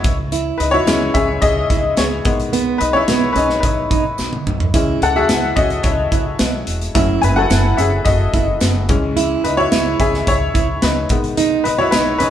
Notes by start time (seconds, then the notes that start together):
Already playing: E4 C#5
0.04 C#2, kick, closed hi-hat
0.32 E4, closed hi-hat
0.58 C#2 D#4 B4, closed hi-hat
0.71 E4 F#4 C#5
0.86 C#2 E3 G#3 C#4 E4, snare, closed hi-hat, tambourine
1.14 C#2 C#4 G#4 E5, kick, closed hi-hat
1.42 C#2 G#4 D#5, kick, closed hi-hat
1.70 C#2 E4, kick, closed hi-hat
1.97 C#2 G#4 C#5, snare, closed hi-hat, tambourine
2.24 B1 D#3 G#3 B3, kick, closed hi-hat
2.40 closed hi-hat
2.53 B3, closed hi-hat
2.78 B1 D#4 B4, closed hi-hat
2.93 C#4 E4 C#5
3.08 B1 B3, snare, closed hi-hat, tambourine
3.33 B1 C#4 D#4 B4, closed hi-hat
3.50 snare
3.60 B1 B4, kick, closed hi-hat
3.65 D#4
3.91 B1 D#4, kick, closed hi-hat
4.18 B1, snare, tambourine
4.33 high tom
4.46 B1, mid tom
4.60 floor tom
4.74 C#2 E3 G#3 C#4 E4, kick, closed hi-hat
5.02 C#2 A4 F#5, closed hi-hat
5.16 F#4 G#4 E5
5.29 C#2 E4, snare, closed hi-hat, tambourine
5.56 C#2 C#4 F#4 D#5, kick, closed hi-hat
5.70 closed hi-hat
5.83 C#2 E4 C#5, kick, closed hi-hat
6.12 C#2 E4, kick, closed hi-hat
6.39 B1, snare, closed hi-hat, tambourine
6.67 E1, closed hi-hat
6.82 closed hi-hat
6.95 F#1 F#3 A3 C#4 E4, kick, closed hi-hat
7.22 F#1 B4 G#5, closed hi-hat
7.36 F#4 A4 F#5
7.50 F#1 E4, snare, closed hi-hat, tambourine
7.77 F#1 C#4 G#4 E5, closed hi-hat
8.05 F#1 F#4 D#5, kick, closed hi-hat
8.34 F#1 E4, kick, closed hi-hat
8.60 F#1, snare, closed hi-hat, tambourine
8.89 C#2 E3 G#3 C#4, kick, closed hi-hat
9.17 E4, closed hi-hat
9.44 C#2 D#4 B4, closed hi-hat
9.57 E4 F#4 C#5
9.72 C#2 E4, snare, closed hi-hat, tambourine
10.00 C#2 C#4 G#4 E5, kick, closed hi-hat
10.14 snare
10.27 C#2 E4 C#5, kick, closed hi-hat
10.54 C#2 E4, kick, closed hi-hat
10.82 C#2 D#4 B4, snare, closed hi-hat, tambourine
11.09 B1 D#3 G#3 B3, kick, closed hi-hat
11.24 closed hi-hat
11.37 D#4, closed hi-hat
11.64 B1 D#4 B4, closed hi-hat
11.78 E4 F#4 C#5
11.91 B1 D#4 B4, snare, closed hi-hat, tambourine
12.18 B1 C#4 D#4 B4, closed hi-hat